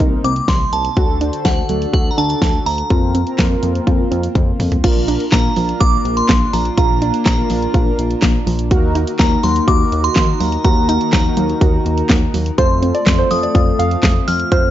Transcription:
Already playing: C3 G3 A#3 C4 D#4 A#4
0.00 C2 D#4, kick, closed hi-hat
0.24 C2 C4 D6, closed hi-hat
0.36 closed hi-hat
0.48 C2 C6, kick, snare, closed hi-hat
0.73 C2 A5, closed hi-hat
0.85 closed hi-hat
0.97 D2 D3 D4 F#4 A4, kick, closed hi-hat
1.21 D4 F#4 C5, closed hi-hat
1.33 closed hi-hat
1.45 D2 A3 F#5, kick, snare, closed hi-hat
1.69 D2 F#3 D4 F#4 A4, closed hi-hat
1.82 closed hi-hat
1.93 D2 F#4 F#5, kick, closed hi-hat
2.11 A#5
2.18 D2 D4 A5, closed hi-hat
2.30 closed hi-hat
2.42 D2, kick, snare, closed hi-hat
2.66 D2 A#5, open hi-hat
2.78 closed hi-hat
2.90 F2 A#3 C4 F4 A#4, kick, closed hi-hat
3.15 C4, closed hi-hat
3.27 C4 F4 A#4, closed hi-hat
3.39 F2 A#3 C4 F4 A#4, kick, snare, clap, closed hi-hat
3.63 F2 F3, closed hi-hat
3.75 closed hi-hat
3.87 F2 F4, kick, closed hi-hat
4.11 F2 C4, closed hi-hat
4.23 closed hi-hat
4.35 F2, kick, closed hi-hat, high tom
4.60 F2, mid tom, open hi-hat
4.72 closed hi-hat, floor tom
4.84 A#1 A#3 D4 F4 A#4, kick, closed hi-hat, crash
5.08 D4, closed hi-hat
5.20 closed hi-hat
5.32 A#1 A#3 D4 F4 A#4 A#5, kick, snare, clap, closed hi-hat
5.56 A#1 F3 A#3 D4 F4 A#4, open hi-hat
5.69 closed hi-hat
5.80 A#1 F4 D6, kick, closed hi-hat
6.05 A#1, closed hi-hat
6.17 C6, closed hi-hat
6.29 A#1 A#3, kick, snare, clap, closed hi-hat
6.53 A#1 F3 A#5, open hi-hat
6.65 closed hi-hat
6.77 A#1 A#3 D4 F4 A#4 A#5, kick, closed hi-hat
7.02 D4, closed hi-hat
7.14 closed hi-hat
7.26 A#1 A#3 A#5, kick, snare, clap, closed hi-hat
7.38 A#3 D4 F4 A#4
7.50 A#1 F3 A#3 D4 F4 A#4, open hi-hat
7.62 closed hi-hat
7.74 A#1 F4, kick, closed hi-hat
7.98 A#1, closed hi-hat
8.11 closed hi-hat
8.22 A#1 A#3, kick, snare, clap, closed hi-hat
8.47 A#1 F3, open hi-hat
8.59 closed hi-hat
8.71 D#2 D#3 A#3 D#4 F#4 A#4, kick, closed hi-hat
8.95 D#4, closed hi-hat
9.07 closed hi-hat
9.19 D#2 A#3 D#4 F#4 A#4 A#5, kick, snare, clap, closed hi-hat
9.43 D#2 F#3 A#3 D#4 F#4 A#4 C6, open hi-hat
9.56 closed hi-hat
9.68 D#2 F#4 D6, kick, closed hi-hat
9.92 D#2, closed hi-hat
10.04 C6, closed hi-hat
10.16 D#2 A#3, kick, snare, clap, closed hi-hat
10.40 D#2 F#3 A#5, open hi-hat
10.52 closed hi-hat
10.64 D#2 A#3 D#4 F#4 A#4 A#5, kick, closed hi-hat
10.89 D#4 A#5, closed hi-hat
11.01 closed hi-hat
11.13 D#2 A#3 A#5, kick, snare, clap, closed hi-hat
11.25 A#3 D#4 F#4 A#4
11.37 D#2 F#3 A#3 D#4 F#4 A#4, closed hi-hat
11.50 closed hi-hat
11.61 D#2 F#4, kick, closed hi-hat
11.86 D#2, closed hi-hat
11.98 closed hi-hat
12.10 D#2 A#3, kick, snare, clap, closed hi-hat
12.34 D#2 F#3, open hi-hat
12.46 closed hi-hat
12.58 F2 A3 C4 F4 A4 C5 C6, kick, closed hi-hat
12.82 C4, closed hi-hat
12.95 D5, closed hi-hat
13.06 F2 A3 C4 F4 A4, kick, snare, clap, closed hi-hat
13.19 C5
13.31 F2 F3 A3 C4 F4 A4 D#6, open hi-hat
13.43 D5, closed hi-hat
13.55 F2 F4, kick, closed hi-hat
13.79 F2 F5, closed hi-hat
13.91 closed hi-hat
14.03 F2 A3, kick, snare, clap, closed hi-hat
14.28 F2 F3 F6, open hi-hat
14.40 closed hi-hat
14.52 F2 A3 C4 F4 C5 F6, kick, closed hi-hat

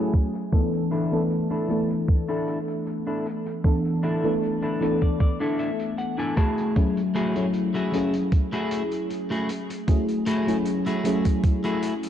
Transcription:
Already playing: F#3 A3 C#4 E4 F#4 G#4 A4 G#5
0.14 kick, closed hi-hat
0.34 muted clean electric guitar stroke, closed hi-hat
0.52 E3 A3 B3 D4 A4, kick, closed hi-hat
0.73 closed hi-hat
0.91 D4 E4 A4, closed hi-hat
1.12 E3 A3 B3 D4 A4, closed hi-hat
1.30 closed hi-hat
1.50 D4 E4 A4, closed hi-hat
1.68 E3 A3 B3 D4 A4, closed hi-hat
1.90 closed hi-hat
2.08 kick, closed hi-hat
2.28 D4 E4 A4, closed hi-hat
2.47 closed hi-hat
2.68 closed hi-hat
2.86 muted clean electric guitar stroke, closed hi-hat
3.07 D4 E4 A4, closed hi-hat
3.26 closed hi-hat
3.46 muted clean electric guitar stroke, closed hi-hat
3.64 E3 A3 B3 D4 A4, kick, closed hi-hat
3.85 closed hi-hat
4.03 D4 E4 A4, closed hi-hat
4.24 E3 A3 B3 D4 A4, closed hi-hat
4.43 closed hi-hat
4.62 D4 E4 A4, closed hi-hat
4.80 E3 A3 B3 D4 A4 B4, closed hi-hat
5.01 D5, kick, closed hi-hat
5.20 D5, kick, closed hi-hat
5.40 D4 E4 A4 E5, closed hi-hat
5.59 E5, closed hi-hat
5.79 closed hi-hat
5.98 F#5, muted clean electric guitar stroke, closed hi-hat
6.18 D4 E4 A4 G#5, closed hi-hat
6.36 A3 E4 F#4 G#4 A5, kick, closed hi-hat
6.58 closed hi-hat
6.76 F#3 A3 C#4 E4, kick, closed hi-hat
6.97 closed hi-hat
7.15 A3 E4 F#4 G#4, closed hi-hat
7.35 F#3 A3 C#4 E4, closed hi-hat
7.53 closed hi-hat
7.74 A3 E4 F#4 G#4, closed hi-hat
7.92 F#3 A3 C#4 E4 G#4, closed hi-hat
8.14 closed hi-hat
8.32 kick, closed hi-hat
8.52 A3 E4 F#4 G#4, closed hi-hat
8.71 closed hi-hat
8.91 closed hi-hat
9.10 muted clean electric guitar stroke, closed hi-hat
9.30 A3 E4 F#4 G#4, closed hi-hat
9.49 closed hi-hat
9.69 muted clean electric guitar stroke, closed hi-hat
9.87 F#3 A3 C#4 E4 G#4, kick, closed hi-hat
10.08 closed hi-hat
10.26 A3 E4 F#4 G#4, closed hi-hat
10.47 F#3 A3 C#4 E4 G#4, closed hi-hat
10.65 closed hi-hat
10.86 A3 E4 F#4 G#4, closed hi-hat
11.04 F#3 A3 C#4 E4 G#4, closed hi-hat
11.25 kick, closed hi-hat
11.44 kick, closed hi-hat
11.64 A3 E4 F#4 G#4, closed hi-hat
11.83 closed hi-hat
12.03 closed hi-hat

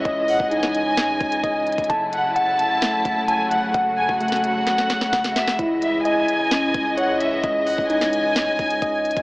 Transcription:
Already playing: C#3 E3 G#3 C#4 E4 C#5 D#5
0.05 C#2 D#5, kick, closed hi-hat
0.28 F#5, open hi-hat
0.40 C#2, kick
0.51 D#4 G#5, closed hi-hat
0.63 snare
0.75 closed hi-hat
0.97 E2, snare, closed hi-hat
1.09 C#2
1.20 C#2, kick, closed hi-hat
1.32 closed hi-hat
1.43 C#2 D#5, kick, closed hi-hat
1.67 closed hi-hat
1.72 closed hi-hat
1.78 C#2, kick, closed hi-hat
1.84 closed hi-hat
1.90 F#1 F#3 A3 E4 A5, kick, closed hi-hat
2.13 F#5, closed hi-hat
2.36 F#5 A5, closed hi-hat
2.59 closed hi-hat
2.82 A3, snare, closed hi-hat
3.05 F#1, kick, closed hi-hat
3.28 G#5 A5, closed hi-hat
3.51 F#5, closed hi-hat
3.74 F#1 F#4 F#5, kick, closed hi-hat
3.97 G#5
4.09 F#1, kick
4.20 A3 F#5, closed hi-hat
4.28 snare, closed hi-hat
4.36 closed hi-hat
4.44 closed hi-hat
4.67 snare, closed hi-hat
4.78 snare
4.90 snare, closed hi-hat
5.01 snare
5.13 F#1 F#5, kick, snare, closed hi-hat
5.24 snare
5.36 E5, snare, closed hi-hat
5.47 snare
5.59 C#2 E3 G#3 E4 D#5, kick, closed hi-hat
5.82 E5, closed hi-hat
6.05 D#5 G#5, closed hi-hat
6.28 closed hi-hat
6.51 C#4, snare, closed hi-hat
6.74 C#2, kick, closed hi-hat
6.97 C#5 F#5, closed hi-hat
7.20 E5, closed hi-hat
7.44 C#2 D#5, kick, closed hi-hat
7.67 F#5, open hi-hat
7.78 C#2, kick
7.90 D#4 G#5, closed hi-hat
8.01 snare
8.13 closed hi-hat
8.36 E2, snare, closed hi-hat
8.47 C#2
8.59 C#2, kick, closed hi-hat
8.70 closed hi-hat
8.82 C#2 D#5, kick, closed hi-hat
9.05 closed hi-hat
9.11 closed hi-hat
9.17 C#2, kick, closed hi-hat

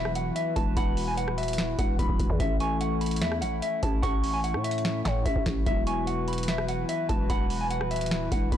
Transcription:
Already playing: E1 E3 F#3 B3 E4 F#4 B4 E5 B5
0.05 cross-stick
0.15 F#5, closed hi-hat
0.36 E5, closed hi-hat
0.56 E1 A5, kick, closed hi-hat
0.77 E1 F#5 B5, kick, closed hi-hat
0.97 open hi-hat
1.08 G#5
1.17 F#5, closed hi-hat
1.28 D#1, cross-stick
1.38 E5, closed hi-hat
1.43 closed hi-hat
1.48 closed hi-hat
1.53 closed hi-hat
1.58 snare, closed hi-hat
1.79 E1 F#5, kick, closed hi-hat
1.96 E1 E3 F#3 B3 B5, kick, closed hi-hat
2.01 E4 F#4
2.09 D#1, kick
2.20 E1, kick, closed hi-hat
2.30 E2, kick
2.34 E3 A3
2.40 A1 A3 C#4 E4 E5, kick, closed hi-hat
2.46 A4
2.60 G#5 C#6, closed hi-hat
2.81 F#5, closed hi-hat
3.01 B5, closed hi-hat
3.06 closed hi-hat
3.11 closed hi-hat
3.16 closed hi-hat
3.22 E2 E5, snare
3.32 cross-stick
3.41 A1 F#5, closed hi-hat
3.62 E5, closed hi-hat
3.83 A1 A5, kick, closed hi-hat
4.02 A1 F#5 C#6, kick, closed hi-hat
4.24 open hi-hat
4.34 G#5
4.44 F#5, closed hi-hat
4.54 A2, cross-stick
4.64 E5, closed hi-hat
4.71 closed hi-hat
4.78 closed hi-hat
4.85 snare, closed hi-hat
5.05 A2 F#5, kick, snare, closed hi-hat
5.26 A1 E5, kick, closed hi-hat
5.36 A1, kick
5.46 A1, kick, snare, closed hi-hat
5.61 E3 F#3
5.66 E1 E3 B3 E4 F#4 B4 E5, kick, closed hi-hat
5.72 F#4
5.87 G#5 C#6, closed hi-hat
6.07 F#5, closed hi-hat
6.28 B5, closed hi-hat
6.33 closed hi-hat
6.38 closed hi-hat
6.43 closed hi-hat
6.48 E5, snare, closed hi-hat
6.58 cross-stick
6.68 F#5, closed hi-hat
6.89 E5, closed hi-hat
7.09 E1 A5, kick, closed hi-hat
7.30 E1 F#5 B5, kick, closed hi-hat
7.50 open hi-hat
7.61 G#5
7.71 F#5, closed hi-hat
7.81 D#1, cross-stick
7.91 E5, closed hi-hat
7.96 closed hi-hat
8.01 closed hi-hat
8.06 closed hi-hat
8.11 snare, closed hi-hat
8.32 E1 F#5, kick, closed hi-hat
8.49 E1 E3 F#3 B3 B5, kick, closed hi-hat
8.54 E4

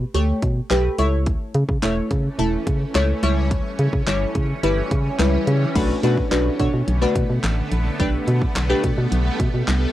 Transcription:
0.14 D2 A3 G4 C#5, closed hi-hat
0.42 B2, kick, closed hi-hat
0.70 B1 A3 G4 B4, snare, clap, closed hi-hat
0.98 C#2 A3 E4 C#5, closed hi-hat
1.26 E3 A3 C#4, kick, closed hi-hat
1.54 C#3, closed hi-hat
1.69 C#3, kick
1.82 E1 A3 E4 C#5, snare, clap, closed hi-hat
2.11 C#3, kick, closed hi-hat
2.39 E1 A3 E4 A4, closed hi-hat
2.67 C#3, kick, closed hi-hat
2.95 C#2 A3 E4 C#5, snare, clap, closed hi-hat
3.23 C#2 E3 G3 E4 C#5, closed hi-hat
3.51 kick, closed hi-hat
3.79 C#3, closed hi-hat
3.93 C#3, kick
4.07 G1 G3 E4 C#5, snare, clap, closed hi-hat
4.35 C#3, kick, closed hi-hat
4.63 G1 G3 E4 B4, closed hi-hat
4.91 C#3, kick, closed hi-hat
5.19 C#2 G3 E4 B4, snare, clap, closed hi-hat
5.47 C#3, closed hi-hat
5.75 B1 D3 A3 B3 D4 F#4 B4, kick, closed hi-hat, crash
6.03 B2 A3 D4 F#4 B4, closed hi-hat
6.17 kick
6.31 B1 A3 D4 F#4 B4, snare, clap, closed hi-hat
6.59 B2 A3 D4 F#4 C#5, kick, closed hi-hat
6.74 B2
6.88 B1, closed hi-hat
7.02 A3 D4 F#4 B4
7.16 B2, kick, closed hi-hat
7.30 B2
7.44 A1, snare, clap, closed hi-hat
7.72 A#1, closed hi-hat
8.00 B1 G3 A3 D4 G4 B4, kick, closed hi-hat
8.28 B2, closed hi-hat
8.42 kick
8.55 B1, snare, clap, closed hi-hat
8.70 A3 D4 G4 B4
8.84 B2, kick, closed hi-hat
8.98 B2
9.12 B1, closed hi-hat
9.40 B2, kick, closed hi-hat
9.54 B2
9.68 C2, snare, clap, closed hi-hat

